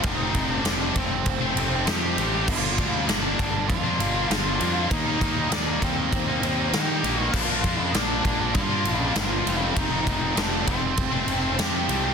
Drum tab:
CC |--------|x-------|--------|x-------|
RD |xxxxxxxx|-xxxxxxx|xxxxxxxx|-xxxxxxx|
SD |--o---o-|--o---o-|--o---o-|--o---o-|
BD |oo-oo---|oo-oo---|oo-oo---|oo-oo---|

CC |--------|
RD |xxxxxxxx|
SD |--o---o-|
BD |oo-oo---|